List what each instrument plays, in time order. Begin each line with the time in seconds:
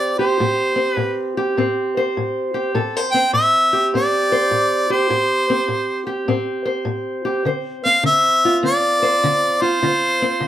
Already playing: steel-string acoustic guitar A2 C4 G4 C5, harmonica D5
0.19 steel-string acoustic guitar G4, harmonica C5
0.40 steel-string acoustic guitar A2 G4
0.76 steel-string acoustic guitar C4
0.94 steel-string acoustic guitar A2, harmonica B4
1.37 steel-string acoustic guitar G4
1.57 steel-string acoustic guitar A2 C4
1.97 steel-string acoustic guitar C5
2.17 steel-string acoustic guitar A2
2.54 steel-string acoustic guitar G4
2.74 steel-string acoustic guitar A2 A4
2.97 steel-string acoustic guitar C5
3.11 steel-string acoustic guitar C4, harmonica G5
3.33 steel-string acoustic guitar A2, harmonica E5
3.73 steel-string acoustic guitar G4
3.94 steel-string acoustic guitar A2 C4, harmonica D5
4.32 steel-string acoustic guitar C5
4.51 steel-string acoustic guitar A2
4.90 steel-string acoustic guitar G4, harmonica C5
5.10 steel-string acoustic guitar A2 G4
5.50 steel-string acoustic guitar C4
5.68 steel-string acoustic guitar A2
6.07 steel-string acoustic guitar G4
6.28 steel-string acoustic guitar A2 C4
6.66 steel-string acoustic guitar C5
6.85 steel-string acoustic guitar A2
7.25 steel-string acoustic guitar G4
7.45 steel-string acoustic guitar D3 C5
7.85 steel-string acoustic guitar C4, harmonica F5
8.03 steel-string acoustic guitar D3, harmonica E5
8.45 steel-string acoustic guitar F4
8.63 steel-string acoustic guitar D3 C4, harmonica D5
9.02 steel-string acoustic guitar C5
9.24 steel-string acoustic guitar D3
9.62 steel-string acoustic guitar F4, harmonica C5
9.83 steel-string acoustic guitar D3 F4
10.22 steel-string acoustic guitar C4
10.40 steel-string acoustic guitar D3